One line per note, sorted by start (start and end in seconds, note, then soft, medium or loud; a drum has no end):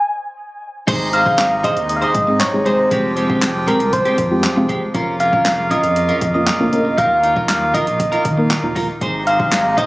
0.00 0.62 G#5 loud
0.87 1.25 G#1 loud
0.87 2.89 C3 medium
0.87 4.91 G#3 medium
0.87 1.08 D#4 loud
0.87 2.89 D#4 medium
0.87 1.08 G#4 medium
0.87 1.09 C5 loud
0.87 kick loud
0.87 closed hi-hat medium
0.87 crash loud
1.13 1.26 D#4 medium
1.13 1.25 G#4 medium
1.13 1.24 C5 medium
1.13 1.61 F5 loud
1.13 closed hi-hat medium
1.25 1.43 D#4 medium
1.25 1.43 G#4 medium
1.25 1.42 C5 medium
1.25 kick loud
1.38 1.67 G#1 loud
1.38 snare loud
1.38 clap loud
1.38 closed hi-hat medium
1.51 muted clean electric guitar stroke soft
1.63 1.84 D#4 medium
1.63 1.76 G#4 medium
1.63 1.75 C5 loud
1.63 1.88 D#5 loud
1.63 kick medium
1.63 closed hi-hat medium
1.76 2.05 D#2 medium
1.76 muted clean electric guitar stroke medium
1.76 closed hi-hat medium
1.89 1.98 D#5 loud
1.89 muted clean electric guitar stroke soft
1.89 closed hi-hat medium
1.96 2.05 F5 medium
2.02 2.13 D#4 medium
2.02 2.14 G#4 medium
2.02 2.14 C5 medium
2.02 2.42 D#5 loud
2.02 closed hi-hat soft
2.15 2.43 G#2 medium
2.15 muted clean electric guitar stroke soft
2.15 kick medium
2.15 closed hi-hat medium
2.27 2.42 G#3 medium
2.27 2.42 C4 medium
2.27 2.42 D#4 medium
2.27 2.42 G#4 medium
2.27 muted clean electric guitar stroke soft
2.40 2.67 C#5 loud
2.40 muted clean electric guitar stroke medium
2.40 snare medium
2.40 clap loud
2.40 closed hi-hat medium
2.53 2.81 G#1 medium
2.53 2.60 G#3 medium
2.53 2.60 C4 medium
2.53 2.61 D#4 medium
2.53 2.61 G#4 medium
2.53 muted clean electric guitar stroke soft
2.65 2.91 G#3 medium
2.65 2.91 C4 medium
2.65 2.86 D#4 medium
2.65 2.91 D#4 medium
2.65 2.91 G#4 medium
2.65 2.78 G#4 medium
2.65 3.42 C5 medium
2.65 2.77 C5 loud
2.65 closed hi-hat medium
2.78 muted clean electric guitar stroke medium
2.91 3.29 F1 loud
2.91 4.93 F3 medium
2.91 3.11 G#3 medium
2.91 3.12 C4 medium
2.91 4.93 G4 medium
2.91 3.12 G4 loud
2.91 kick loud
2.91 closed hi-hat medium
3.16 3.29 G#3 medium
3.16 3.29 C4 medium
3.16 3.28 G4 medium
3.16 closed hi-hat medium
3.29 3.46 G#3 medium
3.29 3.46 C4 medium
3.29 3.46 G4 medium
3.29 kick loud
3.42 3.70 F1 loud
3.42 snare medium
3.42 clap loud
3.42 closed hi-hat medium
3.55 muted clean electric guitar stroke medium
3.67 3.88 G#3 loud
3.67 3.80 C4 loud
3.67 3.79 G4 loud
3.67 3.95 A#4 loud
3.67 kick medium
3.67 closed hi-hat medium
3.80 4.08 C2 medium
3.80 muted clean electric guitar stroke medium
3.80 closed hi-hat medium
3.93 4.44 C5 loud
3.93 muted clean electric guitar stroke soft
3.93 kick medium
3.93 closed hi-hat medium
4.05 4.17 G#3 medium
4.05 4.18 C4 medium
4.05 4.18 G4 medium
4.05 closed hi-hat soft
4.18 4.46 F2 medium
4.18 muted clean electric guitar stroke soft
4.18 kick medium
4.18 closed hi-hat medium
4.31 4.46 G#3 medium
4.31 4.46 C4 medium
4.31 4.46 F4 medium
4.31 4.46 G4 medium
4.31 muted clean electric guitar stroke soft
4.43 muted clean electric guitar stroke soft
4.43 snare medium
4.43 clap loud
4.43 closed hi-hat medium
4.56 4.85 F1 medium
4.56 4.64 G#3 loud
4.56 4.64 C4 medium
4.56 4.64 F4 medium
4.56 4.64 G4 loud
4.56 muted clean electric guitar stroke medium
4.69 4.89 G#3 medium
4.69 4.95 G#3 medium
4.69 4.95 C4 medium
4.69 4.81 C4 medium
4.69 4.95 F4 medium
4.69 4.95 G4 loud
4.69 4.80 G4 loud
4.69 kick loud
4.69 closed hi-hat medium
4.82 muted clean electric guitar stroke medium
4.94 5.32 F1 loud
4.94 6.96 C#3 medium
4.94 8.97 A#3 medium
4.94 5.15 C#4 medium
4.94 8.97 F4 medium
4.94 5.15 F4 loud
4.94 5.15 A#4 loud
4.94 kick loud
4.94 closed hi-hat medium
5.20 5.33 C#4 medium
5.20 5.32 F4 medium
5.20 5.31 A#4 medium
5.20 5.72 F5 loud
5.20 closed hi-hat medium
5.32 5.50 C#4 medium
5.32 5.49 F4 medium
5.32 5.49 A#4 medium
5.32 kick loud
5.45 5.73 F1 loud
5.45 snare loud
5.45 clap loud
5.45 closed hi-hat medium
5.58 muted clean electric guitar stroke medium
5.71 5.91 C#4 loud
5.71 5.83 F4 loud
5.71 5.82 A#4 loud
5.71 6.34 D#5 loud
5.71 kick medium
5.71 closed hi-hat medium
5.83 6.12 F2 medium
5.83 muted clean electric guitar stroke soft
5.83 closed hi-hat medium
5.96 muted clean electric guitar stroke soft
5.96 closed hi-hat medium
6.09 6.20 C#4 medium
6.09 6.21 F4 medium
6.09 6.21 A#4 medium
6.09 closed hi-hat soft
6.21 6.50 F2 loud
6.21 muted clean electric guitar stroke soft
6.21 kick medium
6.21 closed hi-hat medium
6.34 6.49 A#3 medium
6.34 6.49 C#4 medium
6.34 6.49 F4 medium
6.34 6.49 A#4 medium
6.34 7.00 D#5 loud
6.34 muted clean electric guitar stroke medium
6.47 muted clean electric guitar stroke soft
6.47 snare medium
6.47 clap loud
6.47 closed hi-hat medium
6.60 6.88 D2 medium
6.60 6.67 A#3 medium
6.60 6.67 C#4 medium
6.60 6.67 F4 medium
6.60 6.67 A#4 medium
6.60 muted clean electric guitar stroke soft
6.73 6.98 A#3 medium
6.73 6.98 C#4 medium
6.73 6.98 F4 medium
6.73 6.98 A#4 medium
6.73 closed hi-hat medium
6.85 muted clean electric guitar stroke medium
6.98 7.35 D#2 loud
6.98 8.99 D#3 medium
6.98 7.18 D#4 medium
6.98 7.19 F4 loud
6.98 7.19 A#4 loud
6.98 7.23 F5 loud
6.98 kick loud
6.98 closed hi-hat medium
7.23 7.36 D#4 medium
7.23 7.35 F4 medium
7.23 7.34 A#4 medium
7.23 7.35 F5 medium
7.23 closed hi-hat medium
7.36 7.53 D#4 medium
7.36 7.53 F4 medium
7.36 7.52 A#4 medium
7.36 kick loud
7.49 7.77 D#2 loud
7.49 7.76 F5 loud
7.49 snare medium
7.49 clap loud
7.49 closed hi-hat medium
7.61 muted clean electric guitar stroke soft
7.74 7.94 D#4 medium
7.74 7.87 F4 medium
7.74 7.86 A#4 loud
7.74 8.76 D#5 loud
7.74 kick medium
7.74 closed hi-hat medium
7.87 8.15 A#1 medium
7.87 muted clean electric guitar stroke medium
7.87 closed hi-hat medium
7.99 muted clean electric guitar stroke soft
7.99 kick medium
7.99 closed hi-hat medium
8.12 8.24 D#4 medium
8.12 8.24 F4 medium
8.12 8.25 A#4 medium
8.12 closed hi-hat soft
8.25 8.53 D#3 medium
8.25 muted clean electric guitar stroke soft
8.25 kick loud
8.25 closed hi-hat medium
8.38 8.52 A#3 medium
8.38 8.52 D#4 medium
8.38 8.53 F4 medium
8.38 8.53 A#4 loud
8.38 muted clean electric guitar stroke soft
8.50 muted clean electric guitar stroke soft
8.50 snare medium
8.50 clap loud
8.50 closed hi-hat medium
8.63 8.91 D#2 medium
8.63 8.71 A#3 medium
8.63 8.71 D#4 medium
8.63 8.71 F4 medium
8.63 8.71 A#4 loud
8.63 muted clean electric guitar stroke soft
8.75 9.01 A#3 medium
8.75 8.96 D#4 medium
8.75 9.01 D#4 medium
8.75 9.02 F4 medium
8.75 8.88 F4 medium
8.75 9.02 A#4 loud
8.75 8.87 A#4 loud
8.75 kick medium
8.75 open hi-hat medium
8.89 muted clean electric guitar stroke soft
9.01 9.39 G#1 loud
9.01 9.86 C3 medium
9.01 9.86 G#3 medium
9.01 9.22 D#4 medium
9.01 9.86 D#4 medium
9.01 9.22 G#4 medium
9.01 9.22 C5 loud
9.01 kick loud
9.01 closed hi-hat medium
9.26 9.39 D#4 medium
9.26 9.39 G#4 medium
9.26 9.38 C5 medium
9.26 9.79 F5 loud
9.26 closed hi-hat medium
9.39 9.57 D#4 medium
9.39 9.56 G#4 medium
9.39 9.56 C5 medium
9.39 kick loud
9.52 9.80 G#1 loud
9.52 snare medium
9.52 clap loud
9.52 closed hi-hat medium
9.65 muted clean electric guitar stroke medium
9.77 9.86 D#4 loud
9.77 9.86 G#4 loud
9.77 9.86 C5 loud
9.77 9.86 D#5 loud
9.77 kick medium
9.77 closed hi-hat medium